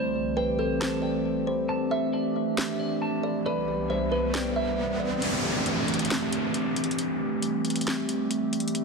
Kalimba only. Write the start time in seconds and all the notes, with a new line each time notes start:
Already playing: C5
0.37 B4
0.59 A4
0.81 C5
1.02 D5
1.47 C5
1.91 E5
3.23 D5
3.46 D5
3.90 C5
4.12 B4
4.33 D5
4.56 E5
5.00 D5